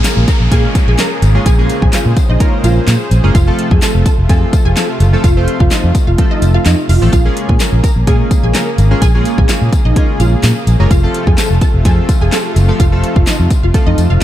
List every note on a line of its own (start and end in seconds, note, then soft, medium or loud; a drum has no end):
0.00 3.31 C#3 medium
0.00 0.24 G#3 medium
0.00 0.24 A#3 medium
0.00 1.44 A#3 medium
0.00 0.24 C#4 medium
0.00 0.24 F4 medium
0.00 0.24 G#4 medium
0.00 3.31 G#4 medium
0.00 downlifter medium
0.04 0.26 A#4 medium
0.04 0.26 A#5 medium
0.04 snare medium
0.04 clap loud
0.04 closed hi-hat medium
0.04 tambourine loud
0.17 0.24 A#1 medium
0.28 0.40 A#4 medium
0.28 0.39 A#5 medium
0.28 kick loud
0.28 closed hi-hat medium
0.28 tambourine medium
0.40 0.47 A#1 loud
0.51 0.66 A#2 loud
0.51 1.07 G#3 medium
0.51 1.07 A#3 medium
0.51 1.07 C#4 medium
0.51 1.07 F4 medium
0.51 1.07 G#4 medium
0.51 0.63 G#4 medium
0.51 0.63 G#5 medium
0.51 kick loud
0.51 closed hi-hat medium
0.51 tambourine soft
0.75 kick loud
0.75 closed hi-hat medium
0.75 tambourine medium
0.87 0.94 A#1 loud
0.87 0.98 G#4 medium
0.87 0.98 G#5 medium
0.99 1.33 A#4 medium
0.99 1.33 A#5 medium
0.99 snare loud
0.99 clap loud
0.99 closed hi-hat medium
0.99 tambourine medium
1.22 1.37 G#1 loud
1.22 closed hi-hat medium
1.22 tambourine medium
1.35 1.50 G#3 medium
1.35 1.50 A#3 medium
1.35 1.50 C#4 medium
1.35 1.50 F4 medium
1.35 1.50 G#4 medium
1.46 1.68 A#1 loud
1.46 1.58 G#4 medium
1.46 3.33 C5 medium
1.46 1.57 G#5 loud
1.46 kick loud
1.46 closed hi-hat loud
1.46 tambourine medium
1.58 2.13 G#3 medium
1.58 2.13 A#3 medium
1.58 2.13 C#4 medium
1.58 2.13 F4 medium
1.58 2.13 G#4 medium
1.69 closed hi-hat medium
1.69 tambourine soft
1.82 1.89 A#1 medium
1.82 1.92 G#4 medium
1.82 1.92 G#5 medium
1.82 kick loud
1.93 2.05 F4 medium
1.93 2.04 F5 medium
1.93 snare medium
1.93 clap loud
1.93 closed hi-hat medium
1.93 tambourine loud
2.06 2.12 A#2 loud
2.17 kick medium
2.17 closed hi-hat medium
2.17 tambourine medium
2.29 2.36 A#1 loud
2.29 2.51 D#4 medium
2.29 2.50 D#5 medium
2.40 2.96 G#3 medium
2.40 2.96 A#3 medium
2.40 2.96 C#4 medium
2.40 2.96 F4 medium
2.40 2.96 A#4 medium
2.40 kick loud
2.40 closed hi-hat medium
2.40 tambourine soft
2.64 2.78 A#1 loud
2.64 2.76 F4 medium
2.64 2.75 F5 medium
2.64 closed hi-hat medium
2.64 tambourine medium
2.88 2.95 A#2 loud
2.88 snare loud
2.88 clap loud
2.88 closed hi-hat medium
2.88 tambourine medium
3.11 3.19 A#1 loud
3.11 closed hi-hat medium
3.11 tambourine medium
3.23 3.31 F#1 medium
3.23 3.35 G#3 medium
3.23 3.35 A#3 medium
3.23 3.35 C#4 medium
3.23 3.35 F4 medium
3.23 3.35 G#4 medium
3.35 3.49 F1 loud
3.35 7.09 C3 medium
3.35 7.09 A3 medium
3.35 7.09 F4 medium
3.35 3.46 F4 medium
3.35 3.46 F5 medium
3.35 kick loud
3.35 closed hi-hat loud
3.35 tambourine soft
3.47 4.02 F3 medium
3.47 4.02 A3 medium
3.47 4.02 C4 medium
3.47 4.02 F4 medium
3.47 4.02 A4 medium
3.59 closed hi-hat medium
3.71 3.78 F2 loud
3.71 3.81 G#4 medium
3.71 3.81 G#5 medium
3.71 kick loud
3.82 4.04 A4 medium
3.82 4.03 A5 medium
3.82 snare medium
3.82 clap loud
3.82 closed hi-hat medium
3.82 tambourine loud
3.95 4.01 F1 loud
4.06 4.17 A4 medium
4.06 4.17 A5 medium
4.06 kick loud
4.06 closed hi-hat medium
4.06 tambourine medium
4.18 4.25 F1 medium
4.29 4.44 F2 loud
4.29 4.85 F3 medium
4.29 4.85 A3 medium
4.29 4.85 C4 medium
4.29 4.85 F4 medium
4.29 4.41 G#4 medium
4.29 4.85 A4 medium
4.29 4.40 G#5 medium
4.29 kick loud
4.29 closed hi-hat medium
4.29 tambourine soft
4.53 kick loud
4.53 closed hi-hat medium
4.53 tambourine medium
4.65 4.72 F1 medium
4.65 4.76 G#4 medium
4.65 4.75 G#5 medium
4.76 5.11 A4 medium
4.76 5.11 A5 medium
4.76 snare loud
4.76 clap loud
4.76 closed hi-hat medium
4.76 tambourine medium
5.00 5.15 F#1 loud
5.00 closed hi-hat medium
5.00 tambourine medium
5.13 5.28 F3 medium
5.13 5.28 A3 medium
5.13 5.28 C4 medium
5.13 5.28 F4 medium
5.13 5.28 A4 medium
5.24 5.46 F1 loud
5.24 5.35 F4 medium
5.24 5.35 F5 loud
5.24 kick loud
5.24 closed hi-hat loud
5.24 tambourine soft
5.37 5.91 F3 medium
5.37 5.91 A3 medium
5.37 5.91 C4 medium
5.37 5.91 F4 medium
5.37 5.91 C5 medium
5.48 closed hi-hat medium
5.60 5.67 F1 medium
5.60 5.70 F4 medium
5.60 5.70 F5 medium
5.60 kick loud
5.71 5.83 D#4 medium
5.71 5.82 D#5 medium
5.71 muted fingered electric bass stroke soft
5.71 snare medium
5.71 clap loud
5.71 closed hi-hat medium
5.71 tambourine medium
5.84 5.90 F2 loud
5.95 kick medium
5.95 closed hi-hat medium
5.95 tambourine medium
6.07 6.14 F1 medium
6.07 6.17 F4 medium
6.07 6.17 F5 medium
6.18 6.74 F3 medium
6.18 6.74 A3 medium
6.18 6.74 C4 medium
6.18 6.74 F4 medium
6.18 6.74 A4 medium
6.18 kick loud
6.18 closed hi-hat medium
6.31 6.41 D#4 medium
6.31 6.41 D#5 medium
6.42 6.56 F1 loud
6.42 closed hi-hat medium
6.42 tambourine medium
6.54 6.65 F4 medium
6.54 6.64 F5 medium
6.66 6.73 F2 loud
6.66 6.77 D#4 medium
6.66 6.77 D#5 medium
6.66 snare loud
6.66 clap loud
6.66 closed hi-hat medium
6.66 tambourine medium
6.89 6.97 F1 medium
6.89 7.01 F4 medium
6.89 7.00 F5 medium
6.89 open hi-hat medium
6.89 tambourine soft
7.02 7.08 A1 medium
7.02 7.13 F3 medium
7.02 7.13 A3 medium
7.02 7.13 C4 medium
7.02 7.13 F4 medium
7.02 7.13 A4 medium
7.12 7.27 A#1 loud
7.12 10.87 C#3 medium
7.12 10.87 A#3 medium
7.12 7.24 F4 medium
7.12 10.87 G#4 medium
7.12 7.24 F5 loud
7.12 kick loud
7.12 closed hi-hat loud
7.12 tambourine soft
7.25 7.80 G#3 medium
7.25 7.80 A#3 medium
7.25 7.80 C#4 medium
7.25 7.80 F4 medium
7.25 7.80 G#4 medium
7.37 closed hi-hat medium
7.49 7.56 A#2 medium
7.49 7.59 G#4 medium
7.49 7.59 G#5 medium
7.49 kick loud
7.60 7.81 A#4 medium
7.60 7.81 A#5 medium
7.60 snare medium
7.60 clap loud
7.60 closed hi-hat medium
7.60 tambourine loud
7.73 7.79 A#1 loud
7.83 7.95 A#4 medium
7.83 7.95 A#5 medium
7.83 kick medium
7.83 closed hi-hat medium
7.83 tambourine medium
7.96 8.03 A#1 loud
8.07 8.22 A#2 loud
8.07 8.63 G#3 medium
8.07 8.63 A#3 medium
8.07 8.63 C#4 medium
8.07 8.63 F4 medium
8.07 8.63 G#4 medium
8.07 8.19 G#4 medium
8.07 8.18 G#5 medium
8.07 kick loud
8.07 closed hi-hat medium
8.07 tambourine soft
8.31 kick loud
8.31 closed hi-hat medium
8.31 tambourine medium
8.43 8.50 A#1 loud
8.43 8.54 G#4 medium
8.43 8.53 G#5 medium
8.55 8.89 A#4 medium
8.55 8.89 A#5 medium
8.55 snare loud
8.55 clap loud
8.55 closed hi-hat medium
8.55 tambourine medium
8.78 8.93 G#1 loud
8.78 closed hi-hat medium
8.78 tambourine medium
8.91 9.06 G#3 medium
8.91 9.06 A#3 medium
8.91 9.06 C#4 medium
8.91 9.06 F4 medium
8.91 9.06 G#4 medium
9.02 9.24 A#1 loud
9.02 9.13 G#4 medium
9.02 9.13 G#5 loud
9.02 kick loud
9.02 closed hi-hat medium
9.02 tambourine medium
9.14 9.69 G#3 medium
9.14 9.69 A#3 medium
9.14 9.69 C#4 medium
9.14 9.69 F4 medium
9.14 9.69 G#4 medium
9.25 closed hi-hat medium
9.25 tambourine soft
9.38 9.45 A#1 medium
9.38 9.48 G#4 medium
9.38 9.48 G#5 medium
9.38 kick loud
9.49 9.61 F4 medium
9.49 9.60 F5 medium
9.49 snare medium
9.49 clap loud
9.49 closed hi-hat medium
9.49 tambourine loud
9.62 9.68 A#2 loud
9.73 kick loud
9.73 closed hi-hat medium
9.73 tambourine medium
9.85 9.92 A#1 medium
9.85 10.06 D#4 medium
9.85 10.06 D#5 medium
9.96 10.52 G#3 medium
9.96 10.52 A#3 medium
9.96 10.52 C#4 medium
9.96 10.52 F4 medium
9.96 10.52 G#4 medium
9.96 kick loud
9.96 closed hi-hat medium
10.20 10.34 A#1 loud
10.20 10.31 F4 medium
10.20 10.31 F5 medium
10.20 closed hi-hat medium
10.20 tambourine medium
10.43 10.51 A#2 loud
10.43 snare loud
10.43 clap loud
10.43 closed hi-hat medium
10.43 tambourine medium
10.67 10.75 A#1 loud
10.67 closed hi-hat medium
10.67 tambourine medium
10.79 10.86 F#1 medium
10.79 10.91 G#3 medium
10.79 10.91 A#3 medium
10.79 10.91 C#4 medium
10.79 10.91 F4 medium
10.79 10.91 A#4 medium
10.91 11.05 F1 loud
10.91 14.24 C3 medium
10.91 14.24 A3 medium
10.91 14.24 F4 medium
10.91 11.02 F4 medium
10.91 11.02 F5 loud
10.91 kick loud
10.91 closed hi-hat loud
10.91 tambourine medium
11.03 11.58 F3 medium
11.03 11.58 A3 medium
11.03 11.58 C4 medium
11.03 11.58 F4 medium
11.03 11.58 A4 medium
11.14 closed hi-hat medium
11.27 11.34 F2 medium
11.27 11.37 G#4 medium
11.27 11.37 G#5 medium
11.27 kick loud
11.38 11.60 A4 medium
11.38 11.59 A5 medium
11.38 snare medium
11.38 clap loud
11.38 closed hi-hat medium
11.38 tambourine loud
11.50 11.57 F1 medium
11.61 11.73 A4 medium
11.61 11.73 A5 medium
11.61 kick medium
11.61 closed hi-hat medium
11.61 tambourine medium
11.74 11.81 F1 medium
11.85 11.99 F2 loud
11.85 12.41 F3 medium
11.85 12.41 A3 medium
11.85 12.41 C4 medium
11.85 12.41 F4 medium
11.85 11.97 G#4 medium
11.85 12.41 A4 medium
11.85 11.96 G#5 medium
11.85 kick loud
11.85 closed hi-hat medium
11.85 tambourine soft
12.09 kick loud
12.09 closed hi-hat medium
12.09 tambourine medium
12.21 12.28 F1 medium
12.21 12.32 G#4 medium
12.21 12.31 G#5 medium
12.32 12.67 A4 medium
12.32 12.66 A5 medium
12.32 snare loud
12.32 clap loud
12.32 closed hi-hat medium
12.32 tambourine medium
12.56 12.70 F#1 medium
12.56 closed hi-hat medium
12.56 tambourine medium
12.68 12.84 F3 medium
12.68 12.84 A3 medium
12.68 12.84 C4 medium
12.68 12.84 F4 medium
12.68 12.84 A4 medium
12.80 13.02 F1 loud
12.80 12.91 F4 medium
12.80 12.91 F5 loud
12.80 kick loud
12.80 closed hi-hat medium
12.80 tambourine soft
12.92 13.47 F3 medium
12.92 13.47 A3 medium
12.92 13.47 C4 medium
12.92 13.47 F4 medium
12.92 13.47 A4 medium
13.04 closed hi-hat medium
13.16 13.23 F1 medium
13.16 13.26 F4 medium
13.16 13.26 F5 medium
13.16 kick loud
13.27 13.39 D#4 medium
13.27 13.38 D#5 medium
13.27 snare medium
13.27 clap loud
13.27 closed hi-hat medium
13.27 tambourine loud
13.40 13.46 F2 loud
13.50 kick medium
13.50 closed hi-hat medium
13.50 tambourine medium
13.63 13.70 F1 loud
13.63 13.73 F4 medium
13.63 13.73 F5 medium
13.74 14.24 F3 medium
13.74 14.24 A3 medium
13.74 14.24 C4 medium
13.74 14.24 F4 medium
13.74 14.24 A4 medium
13.74 kick medium
13.74 closed hi-hat medium
13.74 tambourine soft
13.86 13.93 F2 loud
13.86 13.97 D#4 medium
13.86 13.96 D#5 medium
13.98 14.05 F2 medium
13.98 closed hi-hat medium
13.98 tambourine medium
14.10 14.17 F1 medium
14.10 14.21 F4 medium
14.10 14.20 F5 medium